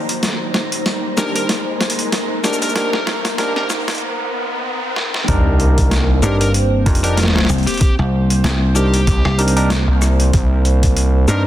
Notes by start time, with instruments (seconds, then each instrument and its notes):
Already playing: analog synth pad A#3 D#4 C5, ambient pad D#4 C5 A#5, riser
0.09 closed hi-hat
0.23 analog synth pad A#4, snare, closed hi-hat
0.54 snare, closed hi-hat
0.72 closed hi-hat
0.86 snare, closed hi-hat
1.17 tine electric piano D4 D#4 G4 A#4, lead electric guitar A#4, snare, shaker
1.36 lead electric guitar A#4, closed hi-hat
1.49 snare, closed hi-hat
1.81 snare, closed hi-hat
1.90 closed hi-hat
1.99 closed hi-hat
2.12 snare, closed hi-hat
2.44 tine electric piano D4 D#4 G4 A#4, lead electric guitar A#4, snare, closed hi-hat, shaker
2.53 shaker
2.62 lead electric guitar A#4, closed hi-hat, shaker
2.69 shaker
2.75 tine electric piano D4 D#4 G4 A#4, lead electric guitar A#4, snare, closed hi-hat
2.93 lead electric guitar A#4, snare
3.07 snare, closed hi-hat
3.25 snare, closed hi-hat
3.38 tine electric piano D4 D#4 G4 A#4, lead electric guitar A#4, snare, closed hi-hat
3.56 lead electric guitar A#4, snare
3.70 snare, shaker
3.88 snare, closed hi-hat
3.91 closed hi-hat
3.95 closed hi-hat
3.98 closed hi-hat
4.96 snare
5.14 snare
5.28 analog synth bass C2, analog synth pad A#3 C4 C5, tine electric piano D4 D#4 G4 A#4, kick, closed hi-hat, sub drop
5.60 closed hi-hat
5.78 kick, closed hi-hat
5.91 snare, closed hi-hat
6.23 slap bass G2, tine electric piano D4 D#4 G4 A#4, lead electric guitar A#4, shaker
6.41 lead electric guitar A#4, closed hi-hat
6.54 closed hi-hat
6.86 slap bass F2, tine electric piano D4 D#4 G4 A#4, kick, closed hi-hat
6.95 closed hi-hat
7.04 tine electric piano D4 D#4 G4 A#4, lead electric guitar A#4, closed hi-hat
7.17 snare, closed hi-hat
7.23 snare
7.28 snare
7.35 cross-stick, snare
7.38 snare
7.45 snare
7.49 slap bass C2, closed hi-hat, shaker
7.54 closed hi-hat
7.58 closed hi-hat
7.63 closed hi-hat
7.67 lead electric guitar G4, closed hi-hat
7.71 closed hi-hat
7.74 closed hi-hat
7.77 closed hi-hat
7.81 lead electric guitar G4, kick, closed hi-hat
7.99 slap bass C2
8.30 closed hi-hat
8.44 slap bass C2, snare, closed hi-hat
8.75 tine electric piano D4 D#4 G4 A#4, lead electric guitar G4, shaker
8.94 closed hi-hat
9.07 analog synth bass C2, kick, closed hi-hat
9.25 slap bass C2, cross-stick
9.38 tine electric piano D4 D#4 G4 A#4, closed hi-hat
9.48 closed hi-hat
9.56 tine electric piano D4 D#4 G4 A#4, closed hi-hat
9.70 snare, closed hi-hat
9.88 analog synth bass C2
10.02 cross-stick, closed hi-hat, shaker
10.20 closed hi-hat
10.33 analog synth bass C2, kick, closed hi-hat
10.65 closed hi-hat
10.83 kick, closed hi-hat
10.97 closed hi-hat
11.28 slap bass G2, tine electric piano D4 D#4 G4 A#4, lead electric guitar A#4, shaker